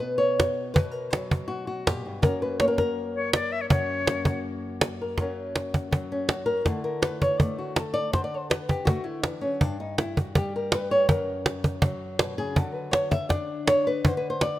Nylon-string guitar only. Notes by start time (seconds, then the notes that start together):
Already playing: B2 B3
0.00 B4
0.18 C#5
0.74 B2 B4
0.91 A#4
1.10 F#3 B4
1.48 F#4
1.67 F#4
1.87 A#2 G4
2.06 G2
2.22 F#2 A#3 C#4 F#4 A#4
2.42 B4
2.60 A#3 C#5
2.68 A#4
2.78 A#4
3.70 F#2 F#4
4.06 A#3
4.26 F#4
5.01 A#4
5.18 F#2 F#3 A#3 C#4 A#4
5.91 F#3
6.12 C#4
6.28 F#4
6.46 A#4
6.65 D3 A3 E4 A4
6.84 A#4
7.02 B4
7.22 C#5
7.39 A3 D5
7.58 F#4
7.76 A4
7.94 D5
8.13 D3 C5
8.24 D5
8.34 A4 C5
8.50 B4
8.69 G4
8.85 A3 F#4
9.04 E4
9.23 E3 D4
9.41 F#3 C#4
9.61 G2 D4
9.80 D#4
9.98 E4
10.18 F#4
10.35 G3 G4
10.56 A#4
10.74 B4
10.91 C#5
11.09 F#2 A#4
11.83 F#3
12.20 B2
12.38 C#3 G#4
12.56 D3 A4
12.74 B4
12.91 C#5
13.11 E5
13.29 D4 D5
13.67 C#5
13.87 B4
14.05 D3 C5
14.17 B4
14.30 C5
14.42 D5